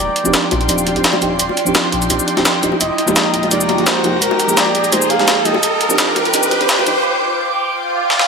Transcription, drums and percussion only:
0.16 closed hi-hat
0.25 high bongo, shaker
0.34 snare, closed hi-hat, shaker
0.51 closed hi-hat, high bongo
0.61 closed hi-hat
0.69 closed hi-hat, shaker
0.78 shaker
0.86 closed hi-hat, high bongo
0.96 closed hi-hat
1.04 snare, closed hi-hat, shaker
1.13 high bongo
1.22 closed hi-hat, shaker
1.39 closed hi-hat, shaker
1.49 high bongo
1.57 closed hi-hat, shaker
1.67 shaker
1.75 snare, closed hi-hat, high bongo, shaker
1.92 closed hi-hat
2.02 closed hi-hat, shaker
2.10 closed hi-hat, high bongo, shaker
2.19 shaker
2.28 closed hi-hat
2.37 snare, closed hi-hat, high bongo
2.45 snare, closed hi-hat, shaker
2.63 closed hi-hat, shaker
2.72 high bongo
2.81 closed hi-hat, high bongo, shaker
2.98 closed hi-hat
3.08 high bongo, shaker
3.16 snare, closed hi-hat, shaker
3.34 closed hi-hat
3.43 closed hi-hat, high bongo
3.51 closed hi-hat, shaker
3.61 shaker
3.69 closed hi-hat, high bongo
3.78 closed hi-hat
3.87 snare, closed hi-hat, shaker
4.04 closed hi-hat, high bongo, shaker
4.22 closed hi-hat, shaker
4.31 high bongo
4.40 closed hi-hat, shaker
4.49 shaker
4.57 snare, closed hi-hat, shaker
4.66 high bongo
4.75 closed hi-hat
4.84 closed hi-hat, shaker
4.92 closed hi-hat, high bongo, shaker
5.02 shaker
5.10 closed hi-hat
5.19 snare, closed hi-hat
5.28 snare, closed hi-hat, high bongo, shaker
5.45 closed hi-hat, shaker
5.54 high bongo
5.63 closed hi-hat, shaker
5.81 closed hi-hat
5.90 high bongo, shaker
5.98 snare, closed hi-hat, shaker
6.16 closed hi-hat, high bongo
6.25 closed hi-hat
6.34 closed hi-hat, shaker
6.43 shaker
6.51 closed hi-hat, high bongo
6.61 closed hi-hat
6.69 snare, closed hi-hat, shaker
6.79 high bongo
6.87 closed hi-hat, shaker
8.10 snare
8.19 snare

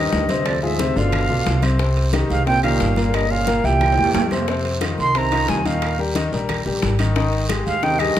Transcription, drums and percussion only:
0.12 high bongo, low bongo, high conga, short guiro
0.29 high conga, high timbale, short guiro
0.46 high bongo, high conga, high timbale, long guiro, claves
0.63 high bongo, high conga
0.79 high bongo, high conga, high timbale, short guiro
0.97 short guiro
1.12 high bongo, high conga, low conga, high timbale, long guiro, claves
1.29 high bongo, high conga
1.46 high bongo, low bongo, high conga, high timbale, short guiro
1.62 high bongo, high conga, high timbale, short guiro, claves
1.79 high bongo, high conga, high timbale, long guiro
1.96 high bongo, high conga, high timbale
2.13 high bongo, high conga, high timbale, short guiro, claves
2.29 high bongo, high conga, short guiro
2.46 high bongo, high conga, high timbale, long guiro
2.63 high bongo, high conga, high timbale, claves
2.80 high bongo, low bongo, high conga, short guiro
2.96 high conga, high timbale, short guiro
3.13 high bongo, high conga, high timbale, long guiro, claves
3.30 high bongo, high conga
3.47 high bongo, high conga, high timbale, short guiro
3.65 short guiro
3.81 high bongo, high conga, low conga, high timbale, long guiro, claves
3.92 high timbale
3.98 high bongo, high conga, low conga
4.04 low timbale
4.14 high bongo, low bongo, high conga, low timbale, short guiro
4.31 high bongo, high conga, short guiro, claves
4.37 low timbale
4.48 high bongo, high timbale, long guiro
4.64 high bongo, high conga, high timbale
4.81 high bongo, high conga, high timbale, short guiro, claves
4.98 high bongo, high conga, short guiro
5.15 high bongo, high conga, high timbale, long guiro
5.32 high bongo, high conga, high timbale, claves
5.48 high bongo, low bongo, high conga, short guiro
5.65 high conga, high timbale, short guiro
5.82 high bongo, high conga, high timbale, long guiro, claves
5.99 high bongo, high conga
6.15 high bongo, high conga, high timbale, short guiro
6.33 short guiro
6.49 high bongo, high conga, low conga, high timbale, long guiro, claves
6.66 high bongo, high conga, low conga
6.82 high bongo, low bongo, high conga, high timbale, short guiro
6.99 high bongo, high conga, high timbale, short guiro, claves
7.16 high bongo, high conga, high timbale, long guiro
7.33 high bongo, high conga, high timbale
7.49 high bongo, high conga, high timbale, short guiro, claves
7.66 high bongo, high conga, short guiro
7.83 high bongo, high conga, high timbale, long guiro
8.00 high bongo, high conga, high timbale, claves
8.17 high bongo, low bongo

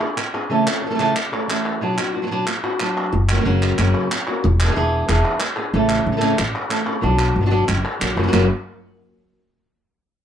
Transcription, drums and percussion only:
0.01 clap
0.18 clap
0.34 clap
0.67 clap
1.00 clap
1.16 clap
1.33 clap
1.50 clap
1.66 clap
1.98 clap
2.47 clap
2.64 clap
2.80 clap
2.97 clap
3.29 clap
3.62 clap
3.78 clap
3.94 clap
4.12 clap
4.27 clap
4.60 clap
5.09 clap
5.25 clap
5.40 clap
5.56 clap
5.89 clap
6.21 clap
6.39 clap
6.55 clap
6.71 clap
6.86 clap
7.19 clap
7.68 clap
7.85 clap
8.02 clap
8.18 clap
8.33 clap

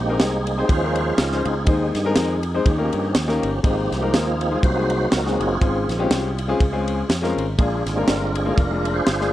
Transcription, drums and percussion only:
0.20 snare, ride
0.47 ride
0.69 kick, ride
0.95 ride
1.18 snare, ride
1.32 snare
1.45 ride
1.67 kick, ride
1.95 snare, ride
2.16 snare, ride
2.43 ride
2.66 kick, ride
2.93 ride
3.15 snare, ride
3.29 snare
3.43 ride
3.64 kick, ride
3.92 snare, ride
4.14 snare, ride
4.41 ride
4.63 kick, ride
4.90 ride
5.12 snare, ride
5.26 snare
5.41 ride
5.62 kick, ride
5.89 snare, ride
6.11 snare, ride
6.38 ride
6.60 kick, ride
6.88 ride
7.10 snare, ride
7.24 snare
7.38 ride
7.59 kick, ride
7.87 snare, ride
8.08 snare, ride
8.35 ride
8.58 kick, ride
8.85 ride
9.06 snare, ride
9.21 snare

